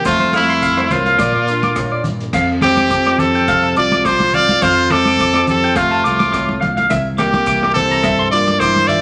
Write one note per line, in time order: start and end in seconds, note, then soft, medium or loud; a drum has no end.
0.00 0.34 C4 soft
0.05 0.63 F2 medium
0.05 0.87 F2 loud
0.05 0.33 A3 medium
0.05 0.32 F4 medium
0.05 0.17 C5 medium
0.05 kick medium
0.05 cross-stick medium
0.05 closed hi-hat soft
0.05 maracas loud
0.20 0.30 C5 medium
0.20 high conga medium
0.33 0.95 A3 medium
0.33 1.21 C4 medium
0.33 0.94 E4 medium
0.33 0.45 F5 medium
0.33 cross-stick medium
0.33 closed hi-hat soft
0.33 high conga medium
0.33 maracas medium
0.49 0.59 C6 medium
0.49 closed hi-hat soft
0.62 0.74 F5 medium
0.62 kick medium
0.62 closed hi-hat soft
0.62 maracas medium
0.77 0.88 C5 medium
0.77 cross-stick medium
0.90 1.18 C2 medium
0.90 1.20 A2 medium
0.90 2.06 A#3 medium
0.90 2.06 F4 medium
0.90 1.03 C5 medium
0.90 closed hi-hat soft
0.90 high conga medium
0.90 low conga medium
0.90 maracas medium
1.06 1.16 F5 medium
1.06 closed hi-hat soft
1.18 1.34 A#1 medium
1.18 2.34 A#2 medium
1.18 1.31 D5 medium
1.18 kick medium
1.18 cross-stick medium
1.18 closed hi-hat soft
1.18 high conga medium
1.18 maracas medium
1.35 2.30 A#2 medium
1.35 1.45 D5 medium
1.48 2.32 D4 medium
1.48 closed hi-hat soft
1.48 maracas medium
1.63 1.73 D6 medium
1.63 closed hi-hat soft
1.63 high conga medium
1.76 2.05 A2 medium
1.76 kick medium
1.76 cross-stick medium
1.76 closed hi-hat soft
1.76 maracas medium
1.92 2.02 D5 medium
2.04 2.34 G2 medium
2.04 closed hi-hat soft
2.04 low conga medium
2.04 maracas medium
2.20 closed hi-hat soft
2.33 3.15 F2 loud
2.33 4.61 F2 medium
2.33 2.92 C4 medium
2.33 2.46 F5 medium
2.33 kick medium
2.33 cross-stick medium
2.33 crash medium
2.33 low conga medium
2.33 maracas medium
2.61 3.76 A3 medium
2.61 3.21 C4 medium
2.61 3.21 G4 medium
2.61 2.74 D6 medium
2.61 cross-stick medium
2.61 closed hi-hat medium
2.61 high conga medium
2.61 low conga medium
2.61 maracas medium
2.77 2.88 D6 medium
2.77 closed hi-hat soft
2.77 high conga medium
2.77 maracas soft
2.90 4.04 F3 medium
2.90 4.33 C4 medium
2.90 3.02 D6 medium
2.90 kick medium
2.90 closed hi-hat soft
2.90 maracas medium
3.06 3.16 D6 medium
3.06 cross-stick medium
3.18 3.73 F2 medium
3.18 3.77 C4 medium
3.18 4.65 G4 medium
3.18 3.76 A4 medium
3.18 closed hi-hat medium
3.18 low conga medium
3.18 maracas medium
3.35 3.45 G5 medium
3.35 closed hi-hat soft
3.48 4.05 C3 medium
3.48 3.60 F5 medium
3.48 kick medium
3.48 cross-stick medium
3.48 closed hi-hat soft
3.48 maracas medium
3.63 3.73 A5 medium
3.63 maracas soft
3.76 4.58 C2 medium
3.76 4.59 A3 medium
3.76 4.08 F4 medium
3.76 4.07 D5 medium
3.76 3.88 D6 medium
3.76 closed hi-hat soft
3.76 maracas medium
3.92 4.02 D6 medium
3.92 closed hi-hat soft
3.92 high conga medium
3.92 maracas soft
4.05 4.59 F3 medium
4.05 4.37 F4 medium
4.05 4.36 C5 loud
4.05 4.17 D6 medium
4.05 kick medium
4.05 cross-stick medium
4.05 closed hi-hat soft
4.05 maracas medium
4.20 high conga medium
4.33 4.62 C4 medium
4.33 4.65 F4 medium
4.33 4.64 D5 loud
4.33 4.46 F5 medium
4.33 closed hi-hat soft
4.33 low conga medium
4.33 maracas medium
4.49 4.60 F5 medium
4.49 closed hi-hat soft
4.49 high conga medium
4.49 maracas soft
4.62 6.33 F2 medium
4.62 5.44 F2 loud
4.62 5.20 C4 medium
4.62 4.95 F4 medium
4.62 4.93 C5 loud
4.62 4.74 F5 medium
4.62 kick medium
4.62 cross-stick medium
4.62 closed hi-hat soft
4.62 low conga medium
4.62 maracas medium
4.90 6.03 A3 medium
4.90 5.49 C4 medium
4.90 5.48 A4 loud
4.90 5.03 D6 medium
4.90 cross-stick medium
4.90 closed hi-hat soft
4.90 high conga medium
4.90 low conga medium
4.90 maracas medium
5.05 5.17 D6 medium
5.05 closed hi-hat soft
5.05 high conga medium
5.05 maracas soft
5.19 6.87 F3 medium
5.19 6.90 C4 medium
5.19 5.32 D6 medium
5.19 kick medium
5.19 closed hi-hat soft
5.19 maracas medium
5.34 5.45 D6 medium
5.34 cross-stick medium
5.47 6.02 F2 loud
5.47 5.80 C4 medium
5.47 6.87 G4 medium
5.47 5.79 A4 medium
5.47 closed hi-hat medium
5.47 low conga medium
5.47 maracas medium
5.63 5.73 G5 medium
5.63 closed hi-hat medium
5.75 6.61 C3 medium
5.75 6.06 A3 medium
5.75 6.05 F4 medium
5.75 5.88 F5 medium
5.75 kick medium
5.75 cross-stick medium
5.75 closed hi-hat medium
5.75 maracas medium
5.91 6.01 A5 medium
5.91 maracas soft
6.04 6.86 C2 medium
6.04 6.87 A3 medium
6.04 6.59 A3 medium
6.04 6.58 F4 medium
6.04 6.16 D6 medium
6.04 closed hi-hat medium
6.04 maracas medium
6.19 6.29 D6 medium
6.19 closed hi-hat medium
6.19 high conga medium
6.19 maracas soft
6.33 6.62 A2 medium
6.33 6.44 D6 medium
6.33 kick medium
6.33 cross-stick medium
6.33 closed hi-hat medium
6.33 maracas medium
6.49 high conga medium
6.61 6.90 A#2 medium
6.61 6.73 F5 medium
6.61 closed hi-hat soft
6.61 low conga medium
6.77 6.87 F5 medium
6.77 closed hi-hat soft
6.77 high conga medium
6.77 maracas soft
6.90 7.71 C2 loud
6.90 7.47 C3 medium
6.90 7.47 E4 medium
6.90 7.02 E5 medium
6.90 kick medium
6.90 cross-stick medium
6.90 closed hi-hat medium
6.90 low conga medium
6.90 maracas medium
7.18 7.72 A#3 medium
7.18 8.33 A#3 medium
7.18 7.72 G4 medium
7.18 7.30 D6 medium
7.18 cross-stick medium
7.18 closed hi-hat medium
7.18 high conga medium
7.18 low conga medium
7.18 maracas medium
7.33 7.44 D6 medium
7.33 closed hi-hat medium
7.33 high conga medium
7.33 maracas soft
7.46 8.60 E3 medium
7.46 8.89 E4 medium
7.46 7.58 D6 medium
7.46 kick medium
7.46 closed hi-hat soft
7.46 maracas medium
7.63 7.73 D6 medium
7.63 cross-stick medium
7.74 8.29 C2 medium
7.74 8.28 C4 medium
7.74 9.02 G4 medium
7.74 8.27 A4 medium
7.74 closed hi-hat medium
7.74 low conga medium
7.74 maracas medium
7.91 8.01 A#5 medium
7.91 closed hi-hat medium
8.03 9.02 G2 medium
8.03 8.16 E5 medium
8.03 kick medium
8.03 cross-stick medium
8.03 closed hi-hat medium
8.03 maracas medium
8.19 8.29 C6 medium
8.19 maracas soft
8.31 9.02 G2 medium
8.31 9.02 A#3 medium
8.31 8.62 F4 medium
8.31 8.61 D5 medium
8.31 8.44 D6 medium
8.31 closed hi-hat soft
8.31 maracas medium
8.47 8.57 D6 medium
8.47 closed hi-hat soft
8.47 high conga medium
8.47 maracas soft
8.60 9.02 E3 medium
8.60 8.89 E4 medium
8.60 8.89 C5 medium
8.60 8.73 D6 medium
8.60 kick medium
8.60 cross-stick medium
8.60 closed hi-hat soft
8.60 maracas medium
8.76 high conga medium
8.88 9.02 E4 medium
8.88 9.02 F4 medium
8.88 9.02 D5 medium
8.88 9.00 E5 medium
8.88 closed hi-hat soft
8.88 low conga medium
8.88 maracas medium